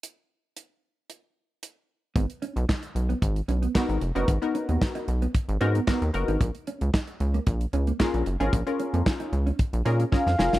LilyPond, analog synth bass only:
\new Staff \with { instrumentName = "Analog synth bass" } { \clef bass \time 4/4 \key gis \dorian \tempo 4 = 113 r1 | gis,,16 r8 b,,16 r8 b,,8 gis,,8 b,,8 r16 gis,,16 eis,,16 fis,,16 | gis,,16 r8 dis,16 r8 b,,8 r16 gis,,16 gis,8 r16 dis,16 fis,,16 gis,,16 | ais,,16 r8 cis,16 r8 cis,8 ais,,8 cis,8 r16 ais,,16 fis,,16 gis,,16 |
ais,,16 r8 eis,16 r8 cis,8 r16 ais,,16 ais,8 r16 eis,16 eis,,16 fis,,16 | }